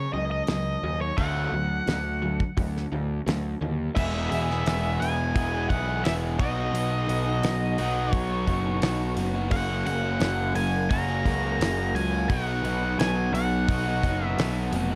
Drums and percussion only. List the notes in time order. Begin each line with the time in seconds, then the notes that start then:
0.47 snare, open hi-hat
1.18 kick, open hi-hat
1.87 snare, open hi-hat
2.40 kick
2.58 kick, open hi-hat
2.77 snare
3.28 snare, open hi-hat
3.97 kick, crash
4.32 open hi-hat
4.51 snare
4.66 snare, open hi-hat
5.02 open hi-hat
5.36 kick, open hi-hat
5.70 kick, open hi-hat
6.05 snare, open hi-hat
6.39 kick, open hi-hat
6.75 open hi-hat
7.09 open hi-hat
7.43 snare, open hi-hat
7.78 open hi-hat
8.13 kick, open hi-hat
8.48 kick, open hi-hat
8.82 snare, open hi-hat
9.17 open hi-hat
9.51 kick, open hi-hat
9.87 open hi-hat
10.20 snare, open hi-hat
10.55 open hi-hat
10.91 kick, open hi-hat
11.26 kick, snare, open hi-hat
11.61 snare, open hi-hat
11.96 open hi-hat
12.30 kick, open hi-hat
12.65 open hi-hat
13.00 snare, open hi-hat
13.35 open hi-hat
13.69 kick, open hi-hat
14.03 kick, open hi-hat
14.39 snare, open hi-hat
14.73 open hi-hat